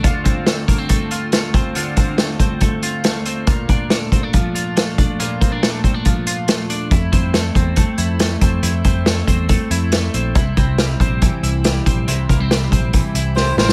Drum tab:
HH |x-x-x-x-x-x-x-x-|x-x-x-x-x-x-x-x-|x-x-x-x-x-x-x-x-|x-x-x-x-x-x-x-x-|
SD |----o-------o---|----o-------o---|----o-------o---|----o-------o---|
BD |o-o---o-o-----o-|--o---o-o-------|o-o---o-o-----o-|--o---o-o-------|

HH |x-x-x-x-x-x-x-x-|x-x-x-x-x-x-x-x-|x-x-x-x-x-x-x-x-|x-x-x-x-x-x-----|
SD |----o-------o---|----o-------o---|----o-------o---|----o-------o-oo|
BD |o-o---o-o-----o-|--o---o-o-------|o-o---o-o-----o-|--o---o-o-------|